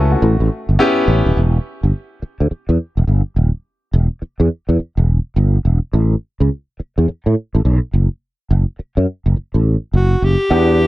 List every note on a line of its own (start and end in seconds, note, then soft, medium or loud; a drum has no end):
0.00 0.14 C#2 medium
0.00 0.12 A3 loud
0.00 0.24 C#4 medium
0.00 0.24 E4 loud
0.00 0.24 F4 medium
0.00 0.12 F#4 loud
0.00 0.11 A4 medium
0.00 0.23 B4 medium
0.12 0.39 A3 medium
0.12 0.39 F#4 medium
0.22 0.35 A1 loud
0.40 0.48 A1 medium
0.69 0.76 G1 medium
0.79 1.26 B3 loud
0.79 1.26 C#4 loud
0.79 1.26 E4 loud
0.79 1.27 G4 loud
1.08 1.21 A1 medium
1.26 1.33 D#1 loud
1.37 1.57 E1 medium
1.83 1.91 G1 medium
2.22 muted fretless electric bass stroke soft
2.40 2.48 D2 medium
2.51 muted fretless electric bass stroke soft
2.69 2.76 E2 medium
2.97 3.05 E1 medium
3.07 3.20 G1 medium
3.36 3.49 D#1 medium
3.93 4.06 E1 loud
4.22 muted fretless electric bass stroke soft
4.40 4.47 E2 medium
4.69 4.76 E2 medium
4.79 muted fretless electric bass stroke soft
4.97 5.18 E1 medium
5.36 5.57 G1 loud
5.65 5.78 E1 medium
5.93 6.14 A1 medium
6.40 6.48 C#2 medium
6.80 muted fretless electric bass stroke soft
6.98 7.05 E2 medium
7.08 muted fretless electric bass stroke soft
7.26 7.33 A2 medium
7.55 7.62 A1 medium
7.65 7.78 B1 medium
7.93 8.06 F#1 medium
8.51 8.63 F#1 medium
8.79 muted fretless electric bass stroke soft
8.97 9.05 F#2 medium
9.26 9.33 F#1 medium
9.36 muted fretless electric bass stroke soft
9.54 9.75 A1 medium
9.93 10.14 F#1 medium
9.93 10.26 F#4 medium
10.22 10.35 F#1 medium
10.22 10.87 G4 medium
10.50 10.84 E2 loud
10.50 10.87 B3 medium
10.50 10.87 D4 medium
10.50 10.87 G4 medium
10.50 10.87 F#5 medium